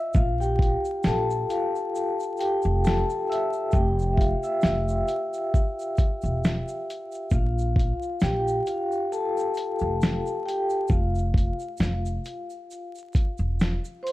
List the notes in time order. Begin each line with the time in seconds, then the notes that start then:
Already playing: F4 D#5 E5 F5 E6
0.13 A#1 F5, kick, shaker
0.16 F4, shaker
0.40 G4 G5, shaker
0.59 kick, closed hi-hat, shaker
0.85 shaker
1.03 A#1 A4 A5, snare, shaker
1.07 shaker
1.31 shaker
1.50 F4 F5, closed hi-hat, shaker
1.76 shaker
1.95 shaker
2.20 shaker
2.22 shaker
2.37 G4 G5, closed hi-hat, shaker
2.41 shaker
2.62 F1, shaker
2.84 A4 A5, shaker
2.86 snare, shaker
3.10 shaker
3.30 E5 E6, closed hi-hat, shaker
3.53 shaker
3.71 F1 G4 G5, kick, shaker
3.75 shaker
3.99 shaker
4.01 shaker
4.13 E5
4.17 F4 F5, kick, closed hi-hat, shaker
4.43 E5 E6, shaker
4.61 F1, snare, shaker
4.66 shaker
4.88 shaker
5.08 closed hi-hat, shaker
5.33 shaker
5.54 kick, shaker
5.79 shaker
5.81 shaker
5.97 kick, closed hi-hat, shaker
5.99 shaker
6.22 E1, shaker
6.25 shaker
6.44 snare, shaker
6.68 shaker
6.90 closed hi-hat, shaker
7.12 shaker
7.14 shaker
7.30 A#1 F4, kick, shaker
7.33 F5, shaker
7.58 shaker
7.60 shaker
7.76 F4 F5, kick, closed hi-hat, shaker
8.02 shaker
8.20 A#1 G4 G5, snare, shaker
8.24 shaker
8.48 shaker
8.66 F4 F5, closed hi-hat, shaker
8.92 shaker
9.12 A4 A5, shaker
9.37 shaker
9.39 shaker
9.54 closed hi-hat, shaker
9.57 shaker
9.79 F1, shaker
10.01 snare, shaker
10.26 shaker
10.46 G4 G5, closed hi-hat, shaker
10.70 shaker
10.88 F1 F4 F5, kick, shaker
10.91 shaker
11.15 shaker
11.18 shaker
11.34 kick, closed hi-hat, shaker
11.59 shaker
11.61 shaker
11.77 F1, snare, shaker
11.83 shaker
12.05 shaker
12.25 closed hi-hat, shaker
12.50 shaker
12.71 shaker
12.95 shaker
12.98 shaker
13.13 kick, closed hi-hat, shaker
13.16 shaker
13.38 E1, shaker
13.60 snare, shaker
13.85 shaker
14.03 C5 C6, closed hi-hat, shaker